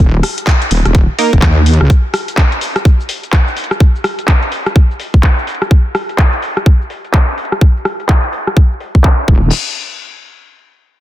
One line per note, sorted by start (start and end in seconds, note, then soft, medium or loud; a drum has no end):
0.00 0.22 D#1 loud
0.00 kick loud
0.00 closed hi-hat medium
0.23 cross-stick medium
0.23 open hi-hat loud
0.38 closed hi-hat medium
0.47 kick loud
0.47 clap loud
0.47 closed hi-hat medium
0.62 closed hi-hat medium
0.71 0.83 D#1 medium
0.71 open hi-hat loud
0.85 1.07 D#1 loud
0.85 cross-stick medium
0.85 closed hi-hat soft
0.95 kick loud
0.95 closed hi-hat medium
1.19 1.31 A#3 loud
1.19 1.31 D#4 medium
1.19 1.31 A#4 loud
1.19 open hi-hat loud
1.33 1.41 D#1 medium
1.33 kick medium
1.33 closed hi-hat medium
1.42 1.78 D#2 loud
1.42 kick loud
1.42 clap loud
1.42 closed hi-hat medium
1.66 open hi-hat medium
1.73 closed hi-hat medium
1.81 1.88 C#2 loud
1.81 cross-stick medium
1.90 kick loud
1.90 closed hi-hat medium
1.90 shaker soft
2.14 cross-stick medium
2.14 open hi-hat loud
2.14 shaker medium
2.28 closed hi-hat medium
2.28 shaker soft
2.38 kick loud
2.38 clap loud
2.38 closed hi-hat medium
2.38 shaker soft
2.52 closed hi-hat medium
2.61 open hi-hat medium
2.61 shaker medium
2.76 cross-stick medium
2.76 closed hi-hat soft
2.76 shaker soft
2.85 kick loud
2.85 closed hi-hat medium
2.85 shaker soft
3.00 shaker soft
3.09 open hi-hat loud
3.09 shaker medium
3.23 closed hi-hat medium
3.23 shaker soft
3.33 kick loud
3.33 clap loud
3.33 closed hi-hat medium
3.33 shaker soft
3.48 shaker soft
3.57 open hi-hat medium
3.57 shaker medium
3.64 closed hi-hat medium
3.71 cross-stick medium
3.71 shaker soft
3.80 kick loud
3.80 closed hi-hat medium
3.80 shaker soft
3.96 shaker soft
4.04 cross-stick medium
4.04 open hi-hat loud
4.04 shaker medium
4.19 closed hi-hat medium
4.19 shaker soft
4.28 kick loud
4.28 clap loud
4.28 closed hi-hat medium
4.43 closed hi-hat medium
4.52 open hi-hat medium
4.52 shaker medium
4.66 cross-stick medium
4.66 closed hi-hat soft
4.66 shaker soft
4.76 kick loud
4.76 closed hi-hat medium
4.76 shaker soft
4.91 shaker soft
5.00 open hi-hat loud
5.00 shaker medium
5.14 kick medium
5.14 closed hi-hat medium
5.23 kick loud
5.23 clap loud
5.23 closed hi-hat medium
5.39 shaker soft
5.47 open hi-hat medium
5.47 shaker medium
5.55 closed hi-hat medium
5.62 cross-stick medium
5.62 shaker soft
5.71 kick loud
5.71 closed hi-hat medium
5.95 cross-stick medium
5.95 open hi-hat loud
5.95 shaker medium
6.09 closed hi-hat medium
6.09 shaker soft
6.19 kick loud
6.19 clap loud
6.33 closed hi-hat medium
6.42 open hi-hat medium
6.42 shaker medium
6.57 cross-stick medium
6.57 closed hi-hat medium
6.57 shaker soft
6.66 kick loud
6.66 closed hi-hat medium
6.81 shaker soft
6.90 open hi-hat loud
6.90 shaker medium
7.05 closed hi-hat medium
7.05 shaker soft
7.14 kick loud
7.14 clap loud
7.29 shaker soft
7.38 open hi-hat medium
7.38 shaker medium
7.45 closed hi-hat medium
7.52 cross-stick medium
7.52 shaker soft
7.61 kick loud
7.77 shaker soft
7.85 cross-stick medium
7.85 open hi-hat loud
7.85 shaker medium
8.00 closed hi-hat medium
8.00 shaker soft
8.09 kick loud
8.09 clap loud
8.24 closed hi-hat medium
8.33 open hi-hat medium
8.33 shaker medium
8.47 cross-stick medium
8.47 closed hi-hat medium
8.47 shaker soft
8.57 kick loud
8.72 shaker soft
8.80 open hi-hat loud
8.80 shaker medium
8.95 kick medium
9.04 kick loud
9.04 clap loud
9.19 shaker soft
9.28 9.50 D#1 loud
9.28 kick loud
9.28 crash medium